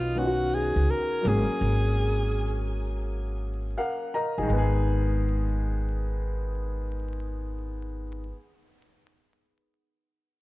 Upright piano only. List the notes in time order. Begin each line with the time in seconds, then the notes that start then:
Already playing: D#3 F#3 B3 C#4
0.15 D#3 B3 C#4
0.19 F4
0.26 F#4
1.21 F#3 A#3
1.27 C#4 G#4
3.78 A#4 F5 F#5
4.14 A#4 D#5 A#5
4.38 D#4 G#4
4.43 D#3
4.48 G#3
4.53 B3
4.58 G#4